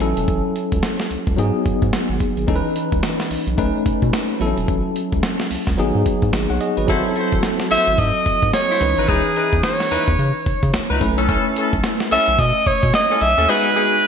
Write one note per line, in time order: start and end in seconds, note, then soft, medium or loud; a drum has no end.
0.00 0.14 A1 loud
0.00 1.35 F#3 medium
0.00 1.35 C#4 medium
0.00 1.35 E4 medium
0.00 1.36 A4 medium
0.00 closed hi-hat medium
0.17 0.26 E1 loud
0.17 closed hi-hat medium
0.28 0.41 A1 loud
0.28 kick loud
0.28 closed hi-hat medium
0.56 closed hi-hat medium
0.72 0.81 C#2 medium
0.72 kick medium
0.72 closed hi-hat medium
0.83 snare loud
0.83 closed hi-hat medium
1.00 snare medium
1.11 1.17 C#2 soft
1.11 closed hi-hat medium
1.27 1.36 C#2 medium
1.27 kick medium
1.27 closed hi-hat soft
1.37 1.51 G#2 loud
1.37 2.45 F#3 medium
1.37 2.46 B3 medium
1.37 2.46 D#4 medium
1.37 2.47 G#4 medium
1.37 closed hi-hat medium
1.66 1.72 G#2 soft
1.66 kick medium
1.66 closed hi-hat medium
1.82 1.91 G#2 medium
1.82 kick medium
1.82 closed hi-hat soft
1.93 2.00 G#1 soft
1.93 snare loud
1.93 closed hi-hat medium
2.09 2.18 G#1 medium
2.20 kick medium
2.20 closed hi-hat medium
2.37 2.46 G#1 medium
2.37 closed hi-hat medium
2.47 2.62 C#2 loud
2.47 3.55 E3 medium
2.47 3.56 C#4 medium
2.47 3.56 D#4 medium
2.47 2.56 A4 medium
2.47 kick loud
2.47 closed hi-hat medium
2.56 3.58 B4 medium
2.76 closed hi-hat medium
2.92 3.01 C#2 medium
2.92 kick loud
2.92 closed hi-hat medium
3.03 snare loud
3.03 closed hi-hat medium
3.20 snare medium
3.31 3.37 B1 soft
3.31 open hi-hat medium
3.47 3.56 B1 loud
3.47 closed hi-hat soft
3.58 3.72 B1 loud
3.58 4.40 A3 medium
3.58 4.41 C#4 medium
3.58 4.41 D#4 medium
3.58 4.41 B4 medium
3.58 kick loud
3.58 closed hi-hat medium
3.86 3.92 B2 soft
3.86 kick medium
3.86 closed hi-hat medium
4.02 4.11 B2 medium
4.02 kick medium
4.02 closed hi-hat soft
4.13 snare loud
4.13 closed hi-hat medium
4.39 4.54 A1 loud
4.39 5.75 F#3 medium
4.39 4.48 B3 medium
4.39 5.76 E4 medium
4.39 5.76 A4 medium
4.39 closed hi-hat medium
4.47 5.79 C#4 medium
4.57 4.66 E1 medium
4.57 closed hi-hat medium
4.68 4.82 A1 loud
4.68 kick loud
4.68 closed hi-hat medium
4.96 closed hi-hat medium
5.12 5.21 C#2 medium
5.12 kick medium
5.12 closed hi-hat medium
5.23 snare loud
5.23 closed hi-hat medium
5.40 snare medium
5.51 5.57 C#2 soft
5.51 open hi-hat medium
5.67 5.76 C#2 medium
5.67 kick medium
5.67 snare medium
5.67 closed hi-hat soft
5.77 5.92 G#1 medium
5.77 6.86 F#3 medium
5.77 6.86 B3 medium
5.77 6.86 D#4 medium
5.77 6.33 G#4 medium
5.77 closed hi-hat medium
5.95 6.04 G#2 loud
6.06 kick medium
6.06 closed hi-hat medium
6.22 6.31 G#2 medium
6.22 kick medium
6.22 closed hi-hat soft
6.33 6.47 G#1 loud
6.33 snare loud
6.33 closed hi-hat medium
6.50 6.59 B1 medium
6.50 6.61 C#5 soft
6.50 6.60 F#5 medium
6.61 6.77 G#4 medium
6.61 6.77 D#5 medium
6.61 closed hi-hat medium
6.77 6.86 G#1 loud
6.77 7.04 F#4 soft
6.77 7.04 B4 medium
6.77 closed hi-hat medium
6.87 7.02 G#1 loud
6.87 8.76 F#3 medium
6.87 8.77 C4 medium
6.87 7.06 E4 medium
6.87 8.77 E4 medium
6.87 7.06 F#4 medium
6.87 7.06 A4 medium
6.87 8.78 A4 medium
6.87 7.06 C5 medium
6.87 kick loud
6.87 closed hi-hat medium
6.87 shaker medium
7.05 shaker medium
7.15 7.33 E4 medium
7.15 7.33 F#4 medium
7.15 7.33 A4 medium
7.15 7.34 C5 medium
7.15 closed hi-hat medium
7.15 shaker soft
7.32 7.42 G#1 medium
7.32 kick loud
7.32 closed hi-hat medium
7.32 shaker medium
7.43 snare loud
7.43 closed hi-hat medium
7.43 shaker medium
7.60 snare medium
7.60 shaker medium
7.71 7.78 G#1 soft
7.71 7.88 E4 medium
7.71 7.89 F#4 medium
7.71 7.89 A4 medium
7.71 7.89 C5 medium
7.71 8.01 E5 loud
7.71 open hi-hat medium
7.87 7.96 G#1 medium
7.87 closed hi-hat soft
7.87 shaker soft
7.98 8.12 G#2 loud
7.98 8.54 D#5 loud
7.98 kick loud
7.98 closed hi-hat medium
7.98 shaker medium
8.15 shaker soft
8.26 8.33 G#2 soft
8.26 kick medium
8.26 closed hi-hat medium
8.26 shaker medium
8.42 8.52 G#2 medium
8.42 kick medium
8.42 closed hi-hat soft
8.42 shaker soft
8.53 9.11 C#5 loud
8.53 snare loud
8.53 closed hi-hat medium
8.53 shaker medium
8.70 8.83 E4 medium
8.70 8.83 F#4 medium
8.70 8.83 A4 medium
8.70 8.83 C5 medium
8.70 shaker soft
8.80 8.95 C#2 loud
8.80 10.97 E3 medium
8.80 10.97 C#4 medium
8.80 10.97 D#4 medium
8.80 10.98 B4 medium
8.80 closed hi-hat medium
8.80 shaker medium
8.97 9.07 G#1 loud
8.97 9.07 D#4 medium
8.97 9.07 E4 medium
8.97 9.08 B4 medium
8.97 closed hi-hat medium
8.97 shaker medium
9.08 9.22 C#2 loud
9.08 9.26 D#4 medium
9.08 9.26 E4 medium
9.08 9.64 G#4 medium
9.08 9.26 B4 medium
9.08 kick loud
9.08 closed hi-hat medium
9.08 shaker medium
9.25 shaker medium
9.36 9.53 D#4 medium
9.36 9.54 E4 medium
9.36 9.54 B4 medium
9.36 closed hi-hat medium
9.36 shaker soft
9.52 9.62 E2 medium
9.52 kick loud
9.52 closed hi-hat medium
9.52 shaker medium
9.63 10.70 C#5 medium
9.63 snare loud
9.63 closed hi-hat medium
9.63 shaker medium
9.80 snare medium
9.80 shaker soft
9.91 9.98 E2 soft
9.91 10.09 D#4 medium
9.91 10.09 E4 medium
9.91 10.09 B4 medium
9.91 open hi-hat medium
10.08 10.17 E2 loud
10.08 kick medium
10.08 closed hi-hat soft
10.08 shaker medium
10.19 10.32 C#3 medium
10.19 closed hi-hat medium
10.19 shaker medium
10.35 shaker soft
10.46 10.53 C#3 soft
10.46 kick loud
10.46 closed hi-hat medium
10.46 shaker medium
10.63 10.72 C#3 medium
10.63 kick medium
10.63 closed hi-hat soft
10.63 shaker soft
10.73 10.80 C#2 soft
10.73 snare loud
10.73 closed hi-hat medium
10.73 shaker medium
10.90 10.99 C#2 medium
10.90 11.03 D#4 medium
10.90 11.03 E4 medium
10.90 11.03 B4 medium
10.90 shaker soft
11.00 11.37 B1 loud
11.00 13.17 A3 medium
11.00 13.17 C#4 medium
11.00 13.18 E4 medium
11.00 13.18 B4 medium
11.00 kick medium
11.00 closed hi-hat medium
11.00 shaker medium
11.18 11.27 C#4 medium
11.18 11.28 E4 medium
11.18 11.28 A4 medium
11.18 closed hi-hat medium
11.18 shaker medium
11.28 11.46 C#4 medium
11.28 11.46 E4 medium
11.28 11.47 A4 medium
11.28 kick loud
11.28 closed hi-hat medium
11.28 shaker medium
11.45 shaker medium
11.56 11.74 C#4 medium
11.56 11.74 E4 medium
11.56 11.74 A4 medium
11.56 closed hi-hat medium
11.56 shaker soft
11.73 11.82 B1 medium
11.73 kick medium
11.73 closed hi-hat medium
11.73 shaker medium
11.84 snare loud
11.84 closed hi-hat medium
11.84 shaker medium
12.00 snare medium
12.00 shaker medium
12.11 12.18 B1 soft
12.11 12.29 C#4 medium
12.11 12.29 E4 medium
12.11 12.29 A4 medium
12.11 12.41 E5 loud
12.11 open hi-hat medium
12.28 12.37 B1 medium
12.28 closed hi-hat soft
12.28 shaker medium
12.39 12.52 B2 medium
12.39 12.69 D#5 loud
12.39 kick medium
12.39 closed hi-hat medium
12.39 shaker medium
12.55 shaker soft
12.66 12.73 B2 soft
12.66 12.94 C#5 loud
12.66 kick medium
12.66 closed hi-hat medium
12.66 shaker medium
12.83 12.92 B2 medium
12.83 kick medium
12.83 closed hi-hat soft
12.83 shaker medium
12.94 13.24 D#5 loud
12.94 snare loud
12.94 closed hi-hat medium
12.94 shaker medium
13.10 13.23 C#4 medium
13.10 13.23 E4 medium
13.10 13.23 A4 medium
13.10 shaker soft
13.21 13.35 B1 loud
13.21 13.51 E5 loud
13.21 closed hi-hat medium
13.21 shaker medium
13.38 13.47 D#2 medium
13.38 13.50 C#4 medium
13.38 13.51 E4 medium
13.38 13.51 A4 medium
13.38 closed hi-hat medium
13.38 shaker medium
13.48 14.07 G#3 medium
13.48 13.66 B3 medium
13.48 14.07 D#4 medium
13.48 13.67 F#4 medium
13.48 14.07 F#4 medium
13.48 13.67 G#4 loud
13.48 14.07 B4 loud
13.48 14.07 B4 medium
13.76 13.94 B3 medium
13.76 13.94 F#4 medium
13.76 13.94 G#4 medium